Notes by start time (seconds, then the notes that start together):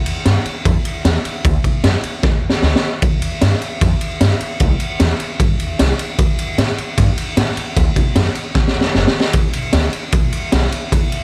0.06 E2, ride
0.26 G2, snare, ride
0.45 muted upright bass stroke, ride
0.65 F2, kick, ride
0.85 muted upright bass stroke, ride
1.05 E2, snare, ride
1.24 muted upright bass stroke, ride
1.45 D2, kick, ride
1.64 muted upright bass stroke, kick, ride
1.84 F#2, snare, ride
2.03 muted upright bass stroke, ride
2.23 A2, kick, snare
2.43 F#2
2.50 snare
2.62 D2, snare
2.76 snare
2.82 muted upright bass stroke
3.02 C2, kick, ride
3.22 E2, ride
3.41 G2, snare, ride
3.61 muted upright bass stroke, ride
3.81 F2, kick, snare, ride
4.01 muted upright bass stroke, ride
4.21 G2, snare, ride
4.40 muted upright bass stroke, ride
4.60 C2, kick, ride
4.80 muted upright bass stroke, ride
5.00 E2, snare, ride
5.20 ride
5.40 G2, kick, ride
5.60 E2, ride
5.79 C2, snare, ride
5.99 muted upright bass stroke, ride
6.18 D2, kick, ride
6.39 F#2, ride
6.58 A2, snare, ride
6.78 muted upright bass stroke, ride
6.98 G2, kick, snare, ride
7.18 muted upright bass stroke, ride
7.37 A2, snare, ride
7.57 muted upright bass stroke, ride
7.76 D2, kick, ride
7.96 kick, ride
8.16 F#2, snare, ride
8.35 muted upright bass stroke, ride
8.55 A2, kick, snare
8.68 snare
8.75 F#2
8.81 snare
8.94 F#1, snare
9.07 snare
9.14 muted upright bass stroke
9.20 snare
9.33 G1, kick, ride
9.53 B1, ride
9.73 D2, snare, ride
9.93 muted upright bass stroke, ride
10.12 B1, kick, ride
10.32 ride
10.52 B1, snare, ride
10.72 ride
10.92 C2, kick, ride
11.12 E2, ride